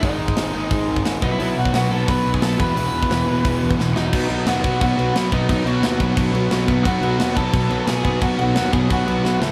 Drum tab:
CC |----------------|----------------|----------------|x-x-x-x-x-x-x-x-|
HH |o---o---o---o---|o---o---o---o---|o---o---o-------|----------------|
SD |----o-------o---|----o-------o---|----o-------o-o-|----o-------o---|
BD |o--o----o--o--o-|---o----o--o--o-|---o----o--o----|o-----o-o-----o-|

CC |x-x-x-x-x-x-x-x-|x-x-x-x-x-x-x-x-|x-x-x-x-x-x-----|
HH |----------------|----------------|----------------|
SD |----o-------o---|----o-------o---|----o-------o-o-|
BD |o-----o-o-----o-|o-----o-o-----o-|o-----o-o-------|